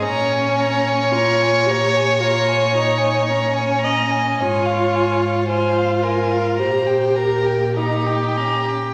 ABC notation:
X:1
M:4/4
L:1/16
Q:1/4=55
K:Bbdor
V:1 name="Violin"
b a b a b a b a b a b a b a b a | a f a f a f a f b g b g b g b g |]
V:2 name="Violin"
d12- d2 e2 | d4 c2 B2 c2 B2 G4 |]
V:3 name="Viola"
D4 F2 G2 F2 E2 D4 | F4 F4 G4 E2 D2 |]
V:4 name="Cello" clef=bass
B,,16 | A,,8 B,,8 |]